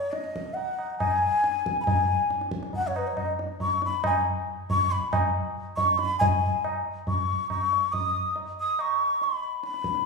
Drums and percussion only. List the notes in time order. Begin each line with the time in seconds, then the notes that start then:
0.13 tabla te
0.24 tabla te
0.36 tabla ke
0.46 tabla te
0.57 tabla tin
0.79 tabla na
1.00 tabla na, tabla ge
1.44 tabla te
1.55 tabla te
1.66 tabla ke
1.77 tabla te
1.87 tabla tin, tabla ge
2.30 tabla te
2.41 tabla te
2.51 tabla ke
2.63 tabla te
2.73 tabla tin, tabla ge
2.96 tabla na
3.17 tabla na, tabla ge
3.39 tabla te
3.60 tabla tin, tabla ge
3.82 tabla te
4.04 tabla na, tabla ge
4.70 tabla tin, tabla ge
4.92 tabla te
5.13 tabla na, tabla ge
5.77 tabla tin, tabla ge
5.99 tabla te
6.21 tabla tin, tabla ge
6.64 tabla na
7.07 tabla tin, tabla ge
7.50 tabla na, tabla ge
7.72 tabla te
7.93 tabla tin, tabla ge
8.36 tabla tin
8.79 tabla na
9.22 tabla tin
9.63 tabla te
9.74 tabla te
9.84 tabla ke
9.95 tabla te